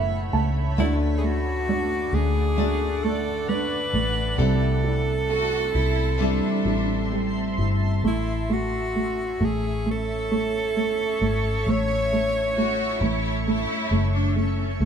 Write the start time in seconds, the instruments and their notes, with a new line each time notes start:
Already playing: fingered electric bass F#1, nylon-string guitar A2 E3 A3 C#4 E4 A4, felt piano A3 C#5 E5 F#5, ambient pad A3 C#5 E5 B5
0.33 fingered electric bass C#2, felt piano A3 A5
0.76 fingered electric bass D2, nylon-string guitar D3 A3 D4 F#4 A4, felt piano D3, alto saxophone E4, ambient pad D5 F#5 D6
1.18 alto saxophone G#4
1.23 felt piano A3, alto saxophone F#4
1.69 felt piano D3
2.13 fingered electric bass D2, felt piano A3, nylon-string guitar D4 F#4, alto saxophone G#4
2.56 nylon-string guitar D3 A3 D4, felt piano D3, ambient pad E6
2.60 nylon-string guitar F#4
3.04 felt piano A3, alto saxophone A4
3.49 felt piano D3, alto saxophone B4
3.93 fingered electric bass A1, felt piano A3
4.36 fingered electric bass C2, nylon-string guitar C3 E3 G3 C4, felt piano C3, alto saxophone A4, ambient pad E5 A5 C6
4.41 nylon-string guitar E4 A4
4.84 felt piano E4
5.28 cello section F#4, felt piano A4
5.73 fingered electric bass C2, cello section E4, felt piano E4
6.18 nylon-string guitar C3 E3 G3 C4, felt piano G3, cello section D4, ambient pad A5
6.22 nylon-string guitar E4 A4
6.65 fingered electric bass A1, felt piano E4
7.12 felt piano G3, cello section C4
7.58 fingered electric bass G1, felt piano E4
8.04 fingered electric bass A1, felt piano A3, ambient pad A3 C#5 E5 C#6, alto saxophone E4
8.49 felt piano A3, alto saxophone F#4
8.95 felt piano A3
9.40 fingered electric bass A1, felt piano A3
9.45 alto saxophone G#4
9.86 felt piano A3
9.91 alto saxophone A4
10.31 felt piano A3
10.76 felt piano A3
11.21 fingered electric bass G#1, felt piano A3
11.67 fingered electric bass A1, felt piano A3, alto saxophone C#5
12.13 felt piano A3
12.55 felt piano A3, cello section F#4
13.00 fingered electric bass A1, felt piano A3, cello section E4
13.46 felt piano A3, cello section E4
13.91 fingered electric bass F#1, felt piano A3
14.14 cello section D4
14.36 felt piano A3, cello section C#4
14.80 fingered electric bass C#2, felt piano A3